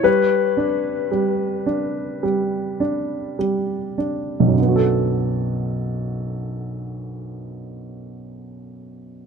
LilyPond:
<<
  \new Staff \with { instrumentName = "Grand piano" } { \time 4/4 \key b \minor \tempo 4 = 51 b'2. r4 | r1 | }
  \new Staff \with { instrumentName = "Upright piano" } { \time 4/4 \key b \minor g8 d'8 g8 d'8 g8 d'8 g8 d'8 | <b,, fis, d b fis' a'>1 | }
>>